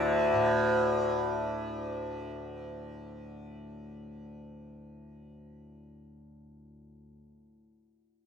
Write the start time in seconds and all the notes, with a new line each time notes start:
Already playing: D2 A2 D3 D4 E4 F#4
0.33 A2